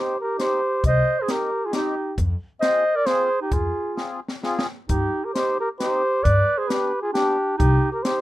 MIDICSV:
0, 0, Header, 1, 6, 480
1, 0, Start_track
1, 0, Key_signature, -3, "minor"
1, 0, Tempo, 450113
1, 898, Time_signature, 3, 2, 24, 8
1, 8755, End_track
2, 0, Start_track
2, 0, Title_t, "Flugelhorn"
2, 0, Program_c, 0, 56
2, 0, Note_on_c, 0, 72, 80
2, 204, Note_off_c, 0, 72, 0
2, 223, Note_on_c, 0, 70, 78
2, 416, Note_off_c, 0, 70, 0
2, 425, Note_on_c, 0, 72, 93
2, 867, Note_off_c, 0, 72, 0
2, 919, Note_on_c, 0, 75, 101
2, 1278, Note_on_c, 0, 72, 84
2, 1294, Note_off_c, 0, 75, 0
2, 1394, Note_on_c, 0, 70, 82
2, 1410, Note_off_c, 0, 72, 0
2, 1761, Note_on_c, 0, 68, 85
2, 1777, Note_off_c, 0, 70, 0
2, 1862, Note_off_c, 0, 68, 0
2, 1867, Note_on_c, 0, 67, 78
2, 2302, Note_off_c, 0, 67, 0
2, 2779, Note_on_c, 0, 75, 113
2, 3160, Note_on_c, 0, 74, 110
2, 3176, Note_off_c, 0, 75, 0
2, 3266, Note_on_c, 0, 72, 107
2, 3282, Note_off_c, 0, 74, 0
2, 3644, Note_off_c, 0, 72, 0
2, 3650, Note_on_c, 0, 67, 74
2, 3762, Note_on_c, 0, 68, 81
2, 3778, Note_off_c, 0, 67, 0
2, 4249, Note_off_c, 0, 68, 0
2, 5227, Note_on_c, 0, 67, 90
2, 5595, Note_on_c, 0, 70, 65
2, 5611, Note_off_c, 0, 67, 0
2, 5687, Note_off_c, 0, 70, 0
2, 5693, Note_on_c, 0, 72, 91
2, 5948, Note_off_c, 0, 72, 0
2, 5976, Note_on_c, 0, 70, 81
2, 6073, Note_off_c, 0, 70, 0
2, 6180, Note_on_c, 0, 72, 104
2, 6648, Note_on_c, 0, 74, 111
2, 6664, Note_off_c, 0, 72, 0
2, 7014, Note_on_c, 0, 72, 73
2, 7030, Note_off_c, 0, 74, 0
2, 7118, Note_on_c, 0, 71, 80
2, 7134, Note_off_c, 0, 72, 0
2, 7477, Note_off_c, 0, 71, 0
2, 7484, Note_on_c, 0, 68, 97
2, 7600, Note_off_c, 0, 68, 0
2, 7609, Note_on_c, 0, 67, 103
2, 8058, Note_off_c, 0, 67, 0
2, 8086, Note_on_c, 0, 67, 96
2, 8437, Note_off_c, 0, 67, 0
2, 8454, Note_on_c, 0, 70, 77
2, 8565, Note_on_c, 0, 72, 85
2, 8581, Note_off_c, 0, 70, 0
2, 8755, Note_off_c, 0, 72, 0
2, 8755, End_track
3, 0, Start_track
3, 0, Title_t, "Clarinet"
3, 0, Program_c, 1, 71
3, 0, Note_on_c, 1, 67, 71
3, 189, Note_off_c, 1, 67, 0
3, 246, Note_on_c, 1, 67, 71
3, 428, Note_off_c, 1, 67, 0
3, 453, Note_on_c, 1, 67, 74
3, 882, Note_off_c, 1, 67, 0
3, 941, Note_on_c, 1, 72, 87
3, 1302, Note_on_c, 1, 68, 77
3, 1318, Note_off_c, 1, 72, 0
3, 1405, Note_on_c, 1, 67, 71
3, 1421, Note_off_c, 1, 68, 0
3, 1775, Note_on_c, 1, 65, 50
3, 1791, Note_off_c, 1, 67, 0
3, 1869, Note_off_c, 1, 65, 0
3, 1874, Note_on_c, 1, 63, 66
3, 2307, Note_off_c, 1, 63, 0
3, 2786, Note_on_c, 1, 72, 84
3, 3145, Note_on_c, 1, 70, 74
3, 3161, Note_off_c, 1, 72, 0
3, 3259, Note_on_c, 1, 68, 78
3, 3275, Note_off_c, 1, 70, 0
3, 3628, Note_off_c, 1, 68, 0
3, 3635, Note_on_c, 1, 63, 65
3, 3761, Note_on_c, 1, 65, 72
3, 3777, Note_off_c, 1, 63, 0
3, 4248, Note_off_c, 1, 65, 0
3, 5217, Note_on_c, 1, 63, 77
3, 5594, Note_on_c, 1, 67, 63
3, 5610, Note_off_c, 1, 63, 0
3, 5702, Note_off_c, 1, 67, 0
3, 5708, Note_on_c, 1, 67, 73
3, 5956, Note_off_c, 1, 67, 0
3, 5965, Note_on_c, 1, 67, 73
3, 6065, Note_off_c, 1, 67, 0
3, 6179, Note_on_c, 1, 67, 75
3, 6651, Note_on_c, 1, 71, 78
3, 6667, Note_off_c, 1, 67, 0
3, 7015, Note_on_c, 1, 68, 84
3, 7031, Note_off_c, 1, 71, 0
3, 7141, Note_on_c, 1, 67, 73
3, 7157, Note_off_c, 1, 68, 0
3, 7490, Note_off_c, 1, 67, 0
3, 7497, Note_on_c, 1, 65, 63
3, 7594, Note_off_c, 1, 65, 0
3, 7600, Note_on_c, 1, 62, 76
3, 8053, Note_off_c, 1, 62, 0
3, 8078, Note_on_c, 1, 63, 94
3, 8432, Note_off_c, 1, 63, 0
3, 8440, Note_on_c, 1, 67, 66
3, 8561, Note_off_c, 1, 67, 0
3, 8561, Note_on_c, 1, 67, 67
3, 8755, Note_off_c, 1, 67, 0
3, 8755, End_track
4, 0, Start_track
4, 0, Title_t, "Accordion"
4, 0, Program_c, 2, 21
4, 0, Note_on_c, 2, 60, 61
4, 0, Note_on_c, 2, 63, 47
4, 0, Note_on_c, 2, 67, 54
4, 166, Note_off_c, 2, 60, 0
4, 172, Note_off_c, 2, 63, 0
4, 173, Note_off_c, 2, 67, 0
4, 399, Note_on_c, 2, 63, 63
4, 406, Note_on_c, 2, 60, 67
4, 406, Note_on_c, 2, 67, 65
4, 646, Note_off_c, 2, 63, 0
4, 649, Note_off_c, 2, 60, 0
4, 649, Note_off_c, 2, 67, 0
4, 1348, Note_on_c, 2, 60, 60
4, 1355, Note_on_c, 2, 63, 54
4, 1364, Note_on_c, 2, 67, 64
4, 1599, Note_off_c, 2, 60, 0
4, 1602, Note_off_c, 2, 63, 0
4, 1607, Note_off_c, 2, 67, 0
4, 1822, Note_on_c, 2, 60, 73
4, 1829, Note_on_c, 2, 63, 61
4, 1832, Note_on_c, 2, 67, 81
4, 2074, Note_off_c, 2, 60, 0
4, 2077, Note_off_c, 2, 63, 0
4, 2079, Note_off_c, 2, 67, 0
4, 2782, Note_on_c, 2, 60, 61
4, 2790, Note_on_c, 2, 65, 55
4, 2793, Note_on_c, 2, 68, 63
4, 3025, Note_off_c, 2, 60, 0
4, 3029, Note_off_c, 2, 65, 0
4, 3031, Note_off_c, 2, 68, 0
4, 3256, Note_on_c, 2, 60, 70
4, 3256, Note_on_c, 2, 65, 55
4, 3270, Note_on_c, 2, 68, 82
4, 3506, Note_off_c, 2, 60, 0
4, 3506, Note_off_c, 2, 65, 0
4, 3513, Note_off_c, 2, 68, 0
4, 4218, Note_on_c, 2, 60, 56
4, 4223, Note_on_c, 2, 65, 55
4, 4228, Note_on_c, 2, 68, 70
4, 4475, Note_off_c, 2, 60, 0
4, 4478, Note_off_c, 2, 65, 0
4, 4480, Note_off_c, 2, 68, 0
4, 4724, Note_on_c, 2, 65, 67
4, 4725, Note_on_c, 2, 60, 81
4, 4731, Note_on_c, 2, 68, 94
4, 4975, Note_off_c, 2, 65, 0
4, 4976, Note_off_c, 2, 60, 0
4, 4979, Note_off_c, 2, 68, 0
4, 5694, Note_on_c, 2, 60, 60
4, 5709, Note_on_c, 2, 63, 50
4, 5709, Note_on_c, 2, 67, 64
4, 5942, Note_off_c, 2, 60, 0
4, 5949, Note_off_c, 2, 63, 0
4, 5949, Note_off_c, 2, 67, 0
4, 6179, Note_on_c, 2, 60, 76
4, 6182, Note_on_c, 2, 63, 59
4, 6182, Note_on_c, 2, 67, 72
4, 6422, Note_off_c, 2, 60, 0
4, 6423, Note_off_c, 2, 63, 0
4, 6423, Note_off_c, 2, 67, 0
4, 7132, Note_on_c, 2, 59, 60
4, 7139, Note_on_c, 2, 62, 65
4, 7148, Note_on_c, 2, 67, 70
4, 7377, Note_off_c, 2, 59, 0
4, 7381, Note_off_c, 2, 62, 0
4, 7385, Note_off_c, 2, 67, 0
4, 7616, Note_on_c, 2, 59, 78
4, 7626, Note_on_c, 2, 62, 63
4, 7627, Note_on_c, 2, 67, 74
4, 7856, Note_off_c, 2, 59, 0
4, 7861, Note_off_c, 2, 62, 0
4, 7862, Note_off_c, 2, 67, 0
4, 8577, Note_on_c, 2, 60, 65
4, 8586, Note_on_c, 2, 63, 68
4, 8588, Note_on_c, 2, 67, 62
4, 8755, Note_off_c, 2, 60, 0
4, 8755, Note_off_c, 2, 63, 0
4, 8755, Note_off_c, 2, 67, 0
4, 8755, End_track
5, 0, Start_track
5, 0, Title_t, "Upright bass"
5, 0, Program_c, 3, 32
5, 891, Note_on_c, 3, 36, 88
5, 1064, Note_off_c, 3, 36, 0
5, 2328, Note_on_c, 3, 41, 96
5, 2497, Note_off_c, 3, 41, 0
5, 3748, Note_on_c, 3, 41, 83
5, 3926, Note_off_c, 3, 41, 0
5, 5224, Note_on_c, 3, 43, 83
5, 5399, Note_off_c, 3, 43, 0
5, 6670, Note_on_c, 3, 43, 95
5, 6842, Note_off_c, 3, 43, 0
5, 8102, Note_on_c, 3, 36, 99
5, 8271, Note_off_c, 3, 36, 0
5, 8755, End_track
6, 0, Start_track
6, 0, Title_t, "Drums"
6, 422, Note_on_c, 9, 38, 55
6, 422, Note_on_c, 9, 42, 48
6, 529, Note_off_c, 9, 38, 0
6, 529, Note_off_c, 9, 42, 0
6, 893, Note_on_c, 9, 36, 87
6, 894, Note_on_c, 9, 42, 46
6, 1000, Note_off_c, 9, 36, 0
6, 1000, Note_off_c, 9, 42, 0
6, 1370, Note_on_c, 9, 38, 66
6, 1370, Note_on_c, 9, 42, 51
6, 1476, Note_off_c, 9, 38, 0
6, 1476, Note_off_c, 9, 42, 0
6, 1846, Note_on_c, 9, 38, 62
6, 1846, Note_on_c, 9, 42, 49
6, 1953, Note_off_c, 9, 38, 0
6, 1953, Note_off_c, 9, 42, 0
6, 2323, Note_on_c, 9, 36, 78
6, 2325, Note_on_c, 9, 42, 48
6, 2430, Note_off_c, 9, 36, 0
6, 2432, Note_off_c, 9, 42, 0
6, 2800, Note_on_c, 9, 38, 73
6, 2800, Note_on_c, 9, 42, 46
6, 2906, Note_off_c, 9, 38, 0
6, 2906, Note_off_c, 9, 42, 0
6, 3269, Note_on_c, 9, 38, 59
6, 3269, Note_on_c, 9, 42, 38
6, 3375, Note_off_c, 9, 38, 0
6, 3375, Note_off_c, 9, 42, 0
6, 3749, Note_on_c, 9, 42, 49
6, 3750, Note_on_c, 9, 36, 85
6, 3856, Note_off_c, 9, 42, 0
6, 3857, Note_off_c, 9, 36, 0
6, 4239, Note_on_c, 9, 38, 50
6, 4345, Note_off_c, 9, 38, 0
6, 4569, Note_on_c, 9, 38, 51
6, 4676, Note_off_c, 9, 38, 0
6, 4729, Note_on_c, 9, 38, 50
6, 4836, Note_off_c, 9, 38, 0
6, 4892, Note_on_c, 9, 38, 81
6, 4999, Note_off_c, 9, 38, 0
6, 5217, Note_on_c, 9, 42, 57
6, 5220, Note_on_c, 9, 36, 89
6, 5323, Note_off_c, 9, 42, 0
6, 5327, Note_off_c, 9, 36, 0
6, 5711, Note_on_c, 9, 38, 63
6, 5711, Note_on_c, 9, 42, 50
6, 5817, Note_off_c, 9, 38, 0
6, 5817, Note_off_c, 9, 42, 0
6, 6190, Note_on_c, 9, 38, 54
6, 6190, Note_on_c, 9, 42, 44
6, 6297, Note_off_c, 9, 38, 0
6, 6297, Note_off_c, 9, 42, 0
6, 6668, Note_on_c, 9, 36, 84
6, 6668, Note_on_c, 9, 42, 47
6, 6775, Note_off_c, 9, 36, 0
6, 6775, Note_off_c, 9, 42, 0
6, 7149, Note_on_c, 9, 38, 68
6, 7149, Note_on_c, 9, 42, 48
6, 7255, Note_off_c, 9, 38, 0
6, 7255, Note_off_c, 9, 42, 0
6, 7627, Note_on_c, 9, 38, 62
6, 7627, Note_on_c, 9, 42, 46
6, 7734, Note_off_c, 9, 38, 0
6, 7734, Note_off_c, 9, 42, 0
6, 8103, Note_on_c, 9, 36, 87
6, 8106, Note_on_c, 9, 42, 49
6, 8210, Note_off_c, 9, 36, 0
6, 8213, Note_off_c, 9, 42, 0
6, 8584, Note_on_c, 9, 38, 74
6, 8584, Note_on_c, 9, 42, 53
6, 8691, Note_off_c, 9, 38, 0
6, 8691, Note_off_c, 9, 42, 0
6, 8755, End_track
0, 0, End_of_file